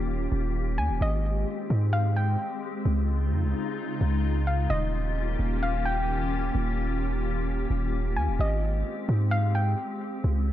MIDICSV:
0, 0, Header, 1, 4, 480
1, 0, Start_track
1, 0, Key_signature, -4, "major"
1, 0, Tempo, 461538
1, 1050, Time_signature, 4, 2, 24, 8
1, 10949, End_track
2, 0, Start_track
2, 0, Title_t, "Synth pluck"
2, 0, Program_c, 0, 84
2, 812, Note_on_c, 0, 80, 77
2, 1039, Note_off_c, 0, 80, 0
2, 1062, Note_on_c, 0, 75, 90
2, 1975, Note_off_c, 0, 75, 0
2, 2005, Note_on_c, 0, 77, 91
2, 2236, Note_off_c, 0, 77, 0
2, 2251, Note_on_c, 0, 79, 84
2, 2929, Note_off_c, 0, 79, 0
2, 4650, Note_on_c, 0, 77, 74
2, 4878, Note_off_c, 0, 77, 0
2, 4888, Note_on_c, 0, 75, 105
2, 5808, Note_off_c, 0, 75, 0
2, 5851, Note_on_c, 0, 77, 87
2, 6079, Note_off_c, 0, 77, 0
2, 6088, Note_on_c, 0, 79, 79
2, 6768, Note_off_c, 0, 79, 0
2, 8491, Note_on_c, 0, 80, 72
2, 8719, Note_off_c, 0, 80, 0
2, 8742, Note_on_c, 0, 75, 89
2, 9655, Note_off_c, 0, 75, 0
2, 9686, Note_on_c, 0, 77, 97
2, 9916, Note_off_c, 0, 77, 0
2, 9931, Note_on_c, 0, 79, 82
2, 10609, Note_off_c, 0, 79, 0
2, 10949, End_track
3, 0, Start_track
3, 0, Title_t, "Ambient pad"
3, 0, Program_c, 1, 92
3, 0, Note_on_c, 1, 51, 82
3, 0, Note_on_c, 1, 58, 76
3, 0, Note_on_c, 1, 61, 74
3, 0, Note_on_c, 1, 65, 75
3, 0, Note_on_c, 1, 67, 89
3, 1011, Note_off_c, 1, 61, 0
3, 1012, Note_off_c, 1, 51, 0
3, 1012, Note_off_c, 1, 58, 0
3, 1012, Note_off_c, 1, 65, 0
3, 1050, Note_on_c, 1, 56, 82
3, 1051, Note_on_c, 1, 60, 75
3, 2928, Note_off_c, 1, 67, 0
3, 2970, Note_on_c, 1, 49, 82
3, 2972, Note_on_c, 1, 63, 75
3, 2972, Note_on_c, 1, 65, 90
3, 4852, Note_off_c, 1, 56, 0
3, 4853, Note_off_c, 1, 60, 0
3, 4871, Note_off_c, 1, 49, 0
3, 4872, Note_off_c, 1, 63, 0
3, 4892, Note_on_c, 1, 58, 74
3, 4892, Note_on_c, 1, 67, 86
3, 4893, Note_on_c, 1, 51, 81
3, 4894, Note_on_c, 1, 61, 75
3, 8690, Note_off_c, 1, 65, 0
3, 8693, Note_off_c, 1, 51, 0
3, 8693, Note_off_c, 1, 58, 0
3, 8694, Note_off_c, 1, 61, 0
3, 8730, Note_on_c, 1, 56, 81
3, 8731, Note_on_c, 1, 60, 77
3, 10610, Note_off_c, 1, 67, 0
3, 10631, Note_off_c, 1, 56, 0
3, 10652, Note_on_c, 1, 49, 80
3, 10653, Note_on_c, 1, 56, 72
3, 10653, Note_on_c, 1, 63, 72
3, 10653, Note_on_c, 1, 65, 89
3, 10949, Note_off_c, 1, 49, 0
3, 10949, Note_off_c, 1, 56, 0
3, 10949, Note_off_c, 1, 60, 0
3, 10949, Note_off_c, 1, 63, 0
3, 10949, Note_off_c, 1, 65, 0
3, 10949, End_track
4, 0, Start_track
4, 0, Title_t, "808-style bass"
4, 0, Program_c, 2, 38
4, 0, Note_on_c, 2, 27, 113
4, 289, Note_off_c, 2, 27, 0
4, 331, Note_on_c, 2, 27, 111
4, 811, Note_on_c, 2, 39, 102
4, 826, Note_off_c, 2, 27, 0
4, 930, Note_on_c, 2, 27, 98
4, 946, Note_off_c, 2, 39, 0
4, 1044, Note_off_c, 2, 27, 0
4, 1051, Note_on_c, 2, 32, 110
4, 1512, Note_off_c, 2, 32, 0
4, 1770, Note_on_c, 2, 44, 100
4, 2462, Note_off_c, 2, 44, 0
4, 2969, Note_on_c, 2, 37, 104
4, 3449, Note_on_c, 2, 41, 103
4, 3464, Note_off_c, 2, 37, 0
4, 3570, Note_on_c, 2, 37, 102
4, 3586, Note_off_c, 2, 41, 0
4, 3684, Note_off_c, 2, 37, 0
4, 4170, Note_on_c, 2, 37, 102
4, 4861, Note_off_c, 2, 37, 0
4, 4890, Note_on_c, 2, 27, 111
4, 5581, Note_off_c, 2, 27, 0
4, 5610, Note_on_c, 2, 27, 107
4, 6769, Note_off_c, 2, 27, 0
4, 6810, Note_on_c, 2, 27, 110
4, 7969, Note_off_c, 2, 27, 0
4, 8011, Note_on_c, 2, 27, 105
4, 8492, Note_on_c, 2, 39, 94
4, 8507, Note_off_c, 2, 27, 0
4, 8612, Note_on_c, 2, 27, 103
4, 8627, Note_off_c, 2, 39, 0
4, 8725, Note_off_c, 2, 27, 0
4, 8730, Note_on_c, 2, 32, 113
4, 9191, Note_off_c, 2, 32, 0
4, 9450, Note_on_c, 2, 44, 105
4, 10142, Note_off_c, 2, 44, 0
4, 10652, Note_on_c, 2, 37, 103
4, 10949, Note_off_c, 2, 37, 0
4, 10949, End_track
0, 0, End_of_file